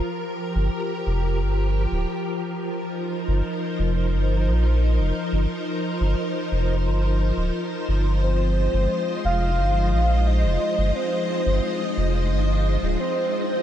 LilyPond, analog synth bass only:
\new Staff \with { instrumentName = "Analog synth bass" } { \clef bass \time 4/4 \key ees \major \tempo 4 = 88 r8. g,,16 r8 f,,8 g,,8. d,,16 r4 | r8. g,,16 r8 f,,8 g,,8 bes,,8. f,,16 r16 g,,16 | r8. g,,16 r8 f,,8 g,,8. d,,16 r8 g,,8~ | g,,8. g,,16 r8 f,,8 g,,8 bes,,8. f,,16 r16 g,,16 |
r8. g,,16 r8 f,,8 g,,8. d,,16 r4 | }